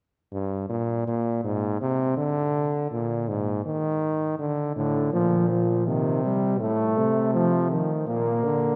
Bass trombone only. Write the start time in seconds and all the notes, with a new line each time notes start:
0.32 G2
0.69 A#2
1.07 A#2
1.44 G#2
1.81 C3
2.17 D3
2.91 A#2
3.28 G#2
3.65 D#3
4.39 D3
4.76 A2
5.13 A#2
5.87 C3
6.61 A2
6.98 C3
8.07 A#2
8.44 D3